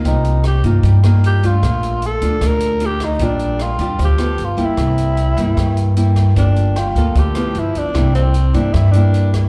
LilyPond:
<<
  \new Staff \with { instrumentName = "Tine electric piano" } { \time 4/4 \key c \dorian \tempo 4 = 152 r1 | r1 | r1 | r1 |
r4 g''4. r4. | r1 | }
  \new Staff \with { instrumentName = "Tenor saxophone" } { \time 4/4 \key c \dorian ees'4 g'8 r4. g'8 f'8~ | f'4 a'4 bes'4 g'8 ees'8 | d'4 f'4 g'4 f'8 e'8~ | e'2. r4 |
d'4 f'4 g'4 e'8 d'8~ | d'8 c'4 d'8 e'8 d'4 r8 | }
  \new Staff \with { instrumentName = "Nylon-string guitar" } { \time 4/4 \key c \dorian << { <bes ees' f'>4 r8 <bes ees' f'>4 <bes ees' f'>4 <a d' f'>8~ | <a d' f'>4. <d' f'>4. <a d' f'>4 | <g d' f'>4. <g d' f'>4 <b f' a'>4 <g bes e'>8~ | <g bes e'>4. <g bes e'>4. <g bes e'>4 |
<bes f' a'>4 r8 <bes f' a'>4 <f b e'>4. | <g bes e'>4 r8 <g bes e'>4 <g bes e'>4. | } \\ { c2 g2 | bes,2 bes,2 | bes,2 f4 r4 | c2 g,2 |
g2 d4 r4 | c2 g,2 | } >> }
  \new Staff \with { instrumentName = "Upright bass" } { \clef bass \time 4/4 \key c \dorian c,4. g,8 g,2 | bes,,4. d,8 d,2 | bes,,4. f,8 d,4 g,,4 | c,4. g,8 g,2 |
g,,4. d,8 d,4 g,,4 | c,4. g,8 g,2 | }
  \new DrumStaff \with { instrumentName = "Drums" } \drummode { \time 4/4 <hh bd>8 hh8 <hh ss>8 <hh bd>8 <hh bd>8 <hh ss>8 hh8 <hh bd>8 | <hh bd ss>8 hh8 hh8 <hh bd>8 <hh bd ss>8 hh8 hh8 <hh bd ss>8 | <hh bd>8 hh8 <hh ss>8 <hh bd>8 <hh bd>8 <hh ss>8 hh8 <hh bd>8 | <hh bd ss>8 hh8 hh8 <hh bd>8 <hh bd ss>8 hh8 hh8 <hh bd ss>8 |
<hh bd>8 hh8 <hh ss>8 <hh bd>8 <hh bd>8 <hh ss>8 hh8 <hh bd>8 | <hh bd ss>8 hh8 hh8 <hh bd>8 <hh bd ss>8 hh8 hh8 <hh bd ss>8 | }
>>